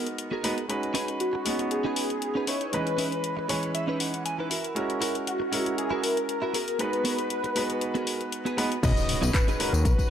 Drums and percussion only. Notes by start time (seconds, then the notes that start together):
0.07 closed hi-hat
0.18 closed hi-hat
0.44 open hi-hat
0.58 closed hi-hat
0.70 closed hi-hat
0.83 closed hi-hat
0.95 open hi-hat
1.08 closed hi-hat
1.20 closed hi-hat
1.46 open hi-hat
1.59 closed hi-hat
1.71 closed hi-hat
1.96 open hi-hat
2.10 closed hi-hat
2.22 closed hi-hat
2.47 open hi-hat
2.61 closed hi-hat
2.73 closed hi-hat
2.87 closed hi-hat
2.98 open hi-hat
3.12 closed hi-hat
3.24 closed hi-hat
3.49 open hi-hat
3.63 closed hi-hat
3.75 closed hi-hat
4.00 open hi-hat
4.14 closed hi-hat
4.26 closed hi-hat
4.51 open hi-hat
4.64 closed hi-hat
4.76 closed hi-hat
4.90 closed hi-hat
5.02 open hi-hat
5.15 closed hi-hat
5.27 closed hi-hat
5.53 open hi-hat
5.66 closed hi-hat
5.78 closed hi-hat
6.04 open hi-hat
6.17 closed hi-hat
6.29 closed hi-hat
6.54 open hi-hat
6.68 closed hi-hat
6.79 closed hi-hat
6.93 closed hi-hat
7.05 open hi-hat
7.18 closed hi-hat
7.30 closed hi-hat
7.44 closed hi-hat
7.56 open hi-hat
7.70 closed hi-hat
7.81 closed hi-hat
7.95 closed hi-hat
8.07 open hi-hat
8.21 closed hi-hat
8.32 closed hi-hat
8.46 closed hi-hat
8.58 open hi-hat
8.72 closed hi-hat
8.83 kick, closed hi-hat, crash, tambourine
8.97 closed hi-hat, tambourine
9.09 open hi-hat
9.23 closed hi-hat, tambourine
9.34 kick, clap, closed hi-hat, tambourine
9.48 closed hi-hat, tambourine
9.60 open hi-hat
9.74 closed hi-hat, tambourine
9.85 kick, closed hi-hat, tambourine
9.99 kick, closed hi-hat, tambourine